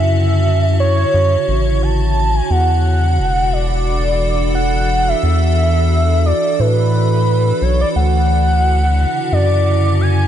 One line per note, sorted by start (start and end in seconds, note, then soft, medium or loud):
0.00 1.05 F#2 medium
0.00 2.47 C#3 medium
0.00 2.47 D3 medium
0.00 2.47 E4 medium
0.00 10.28 F#4 medium
0.00 0.76 E5 loud
0.80 1.84 C#5 loud
1.14 1.37 F#2 loud
1.48 2.41 A1 loud
1.82 2.37 A5 loud
2.36 2.52 G#5 loud
2.50 3.20 E2 loud
2.50 7.92 E3 medium
2.50 7.92 D4 medium
2.50 7.92 A4 medium
2.50 3.54 F#5 loud
3.19 5.14 E1 medium
3.53 4.54 D5 loud
4.55 5.10 F#5 loud
5.08 6.27 E5 loud
5.23 6.33 E2 loud
6.26 6.61 D5 medium
6.59 7.53 A2 medium
6.59 7.63 B4 loud
7.62 7.84 B1 loud
7.62 7.80 C#5 medium
7.81 7.88 D5 medium
7.96 9.06 D2 loud
7.96 10.28 C#3 medium
7.96 10.28 D3 medium
7.96 10.28 E4 medium
7.96 9.34 F#5 loud
9.32 10.28 F#2 medium
9.32 10.02 D5 loud
10.01 10.28 G#5 loud